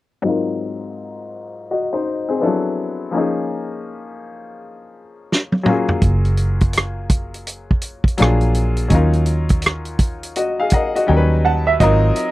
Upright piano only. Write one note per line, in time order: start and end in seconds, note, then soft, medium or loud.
0.22 2.36 G#2 medium
0.22 2.36 F#3 soft
0.22 1.31 C4 soft
0.22 1.31 D#4 medium
0.27 1.32 F4 soft
0.27 1.33 A#4 medium
1.71 1.91 F#4 soft
1.71 1.91 D#5 soft
1.93 2.27 D#4 soft
1.93 2.26 C5 medium
2.29 2.63 C4 soft
2.29 2.62 G#4 medium
2.40 2.49 F3 soft
2.40 3.13 B3 medium
2.40 3.14 D4 medium
2.40 3.14 E4 medium
2.40 3.15 A4 medium
2.47 3.16 F#3 medium
3.11 5.61 F3 medium
3.11 5.62 A#3 soft
3.11 5.63 C#4 medium
3.16 5.64 D#4 medium
3.16 5.65 G#4 medium
5.63 8.14 F#3 medium
5.63 8.15 A#3 medium
5.63 8.15 C#4 soft
5.68 8.16 F4 medium
5.68 8.17 G#4 medium
8.17 8.87 F#3 medium
8.17 8.91 A#3 medium
8.17 8.92 D4 medium
8.17 8.92 F4 medium
8.17 8.92 G#4 medium
8.88 11.03 F#3 soft
8.88 11.04 C#4 medium
8.88 11.04 D#4 medium
8.94 10.34 F4 medium
8.94 10.35 A#4 medium
10.36 10.58 F#4 soft
10.36 10.58 D#5 medium
10.60 10.73 G#4 soft
10.60 10.72 F5 medium
10.73 10.95 A#4 soft
10.73 10.94 D#5 medium
10.73 10.94 F#5 medium
10.95 11.30 F#4 soft
10.95 11.29 D#5 medium
11.07 11.78 F#3 medium
11.07 11.80 G3 medium
11.07 11.80 C#4 medium
11.07 11.80 D#4 soft
11.07 11.17 A#4 medium
11.07 11.42 G5 medium
11.17 11.85 B4 medium
11.45 11.79 A5 medium
11.80 12.31 F#3 medium
11.80 12.31 C4 medium
11.80 12.31 D#4 medium
11.80 12.31 F4 medium
11.80 12.31 A#4 medium